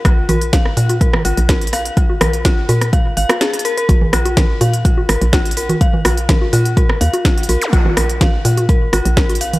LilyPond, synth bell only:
\new Staff \with { instrumentName = "Synth bell" } { \time 4/4 \key c \phrygian \tempo 4 = 125 f'16 r16 bes'16 r16 f''16 r16 f'16 r16 bes'16 r16 f'16 r16 bes'16 r16 f''16 r16 | f'16 r16 bes'16 r16 f'16 r16 bes'16 r16 f''16 r16 f''16 r16 aes'16 r16 bes'16 bes'16 | r8 f'16 r16 bes'16 r16 f''16 r16 f'16 r16 bes'16 r16 f'16 r16 bes'16 r16 | f''16 r16 f'16 r16 bes'16 r16 f'16 r16 bes'16 r16 f''16 r16 f'16 r16 bes'16 r16 |
f'16 r16 bes'16 r16 f''16 r16 f'16 r16 bes'16 r16 f'16 r16 bes'16 r16 f''16 r16 | }